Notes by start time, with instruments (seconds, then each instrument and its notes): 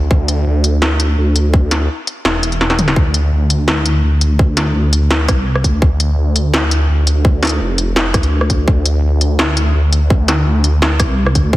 0.11 detuned saw bass D2, kick
0.28 closed hi-hat
0.47 detuned saw bass D2
0.64 closed hi-hat
0.82 snare
1.00 closed hi-hat
1.18 detuned saw bass D2
1.36 closed hi-hat
1.54 kick
1.71 snare, closed hi-hat
2.07 closed hi-hat
2.25 detuned saw bass E1, snare
2.43 closed hi-hat
2.52 closed hi-hat
2.61 snare
2.70 snare
2.75 detuned saw bass D#1, closed hi-hat, mid tom
2.88 snare
2.96 detuned saw bass D2, kick
3.14 closed hi-hat
3.32 detuned saw bass D2
3.50 closed hi-hat
3.68 snare
3.86 closed hi-hat
4.04 detuned saw bass D2
4.21 closed hi-hat
4.39 kick
4.57 snare, closed hi-hat
4.75 detuned saw bass D2
4.93 closed hi-hat
5.11 snare
5.28 detuned saw bass C2, kick, cross-stick, closed hi-hat
5.55 cross-stick
5.64 detuned saw bass D2, kick, closed hi-hat
5.82 detuned saw bass D2, kick
6.00 closed hi-hat
6.18 detuned saw bass D2
6.36 closed hi-hat
6.54 snare
6.71 closed hi-hat
6.89 detuned saw bass D2
7.07 closed hi-hat
7.25 kick
7.43 snare, closed hi-hat
7.45 closed hi-hat
7.47 closed hi-hat
7.49 closed hi-hat
7.61 detuned saw bass F1
7.78 closed hi-hat
7.96 snare
8.14 detuned saw bass D2, kick, cross-stick, closed hi-hat
8.23 closed hi-hat
8.41 cross-stick
8.50 kick, closed hi-hat
8.68 detuned saw bass D2, kick
8.86 closed hi-hat
9.03 detuned saw bass D2
9.21 closed hi-hat
9.39 snare
9.57 closed hi-hat
9.75 detuned saw bass D2
9.93 closed hi-hat
10.10 kick
10.28 snare, closed hi-hat
10.46 detuned saw bass D2
10.64 closed hi-hat
10.82 snare
11.00 detuned saw bass C2, kick, cross-stick, closed hi-hat
11.26 cross-stick
11.35 detuned saw bass D2, kick, closed hi-hat
11.53 detuned saw bass D2, kick